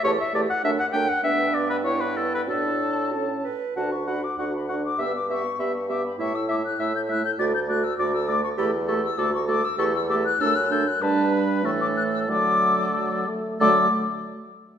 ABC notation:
X:1
M:2/4
L:1/16
Q:1/4=98
K:D
V:1 name="Flute"
a2 a2 a2 a2 | g4 g4 | a4 a2 z2 | a c' b d' c' b c' d' |
e' d' c'2 b c' d' b | c' e' d' f' e' g' f' g' | a' g' f' e' d' e' d' c' | b2 c' e' d' c' d' e' |
c' e' d' f' e' f' g' f' | a2 b2 c' d' f' e' | d'6 z2 | d'2 z6 |]
V:2 name="Oboe"
c e d f e f g f | e2 d B c B A B | A4 z4 | f2 f2 f2 f2 |
e2 e2 e2 e2 | e2 e2 e2 e2 | d2 d2 d2 d2 | A2 A2 A2 A2 |
A2 A2 A2 A2 | B4 A4 | A6 z2 | A2 z6 |]
V:3 name="Clarinet"
G2 G2 D2 D2 | D4 E4 | F4 A2 B2 | F2 F2 F2 F2 |
G2 G2 G2 G2 | E2 E2 E2 E2 | F2 F2 F2 F2 | G2 G2 F2 F2 |
G2 G2 D2 D2 | D4 A,4 | A,6 z2 | A,2 z6 |]
V:4 name="French horn"
A,2 A,2 A,2 A,2 | B,4 B,4 | D4 C2 z2 | D2 D2 D2 D2 |
B,2 B,2 B,2 B,2 | A,2 A,2 A,2 A,2 | A,2 A,2 A,2 A,2 | A,2 A,2 A,2 A,2 |
A,2 A,2 A,2 A,2 | G,4 E,4 | F,4 F,2 A,2 | F,2 z6 |]
V:5 name="Bassoon" clef=bass
E,,2 E,,2 F,,2 F,,2 | G,,8 | A,,6 z2 | D,,4 D,,4 |
G,,4 G,,4 | A,,4 A,,4 | D,,4 D,,4 | E,,4 D,,4 |
E,,4 F,,4 | G,,4 A,,4 | D,6 z2 | D,2 z6 |]